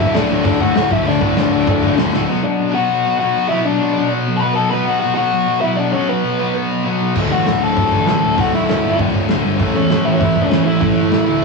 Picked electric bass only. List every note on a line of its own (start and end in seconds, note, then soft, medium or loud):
0.00 0.12 D1 medium
0.15 0.27 D1 medium
0.30 0.42 D1 medium
0.45 0.69 D1 loud
0.75 0.87 D1 loud
0.91 1.03 D1 medium
1.06 1.18 D1 loud
1.21 1.33 D1 medium
1.36 1.48 D1 medium
1.52 1.64 D1 medium
1.67 1.91 D1 loud
1.97 2.09 D1 loud
2.13 2.25 D1 medium
7.16 7.30 D1 medium
7.32 7.45 A1 medium
7.46 7.60 D1 medium
7.61 7.76 D1 medium
7.77 7.91 D1 medium
7.92 8.06 A1 medium
8.06 8.21 A1 loud
8.22 8.36 D1 medium
8.38 8.52 D1 medium
8.53 8.67 B1 medium
8.68 8.83 D1 medium
8.84 8.98 G1 medium
8.99 9.13 D1 loud
9.14 9.28 D1 medium
9.30 9.43 D1 loud
9.44 9.59 G1 loud
9.60 9.74 A1 loud
9.75 9.89 E2 medium
9.90 10.04 A1 medium
10.05 10.20 A1 medium
10.21 10.35 A1 loud
10.36 10.50 E2 medium
10.51 10.65 E2 loud
10.66 10.81 A1 medium
10.82 10.96 A1 loud
10.96 11.11 G1 medium
11.12 11.27 A1 medium
11.28 11.42 D2 medium